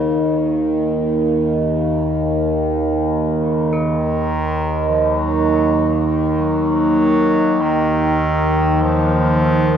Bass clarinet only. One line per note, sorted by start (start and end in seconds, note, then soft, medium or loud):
0.00 0.40 C#3 medium
0.39 1.29 D#3 medium
3.38 3.99 C#3 medium
3.98 4.90 D#3 loud
4.89 5.19 F3 medium
5.18 6.08 F#3 loud
6.39 7.62 F#3 loud
7.61 8.83 D#3 loud
8.82 9.77 F3 loud